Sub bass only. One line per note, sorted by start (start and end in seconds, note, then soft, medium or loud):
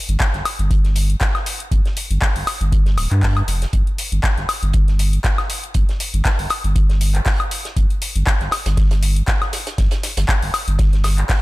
0.09 0.17 G1 medium
0.34 0.42 G1 medium
0.59 1.15 G1 medium
1.72 1.81 G1 loud
2.11 2.18 G1 medium
2.36 2.43 G1 medium
2.61 2.97 G1 medium
2.98 3.07 D1 loud
3.11 3.42 G2 medium
3.48 3.66 F1 medium
3.73 3.83 G1 loud
4.12 4.20 G1 medium
4.37 4.45 G1 medium
4.63 5.19 G1 medium
5.75 5.84 G1 loud
6.14 6.22 G1 medium
6.39 6.47 G1 medium
6.64 7.20 G1 medium
7.77 7.86 G1 loud
8.16 8.23 G1 medium
8.41 8.49 G1 medium
8.66 9.22 G1 medium
9.78 9.88 G1 loud
10.17 10.25 G1 medium
10.43 10.50 G1 medium
10.68 11.24 G1 medium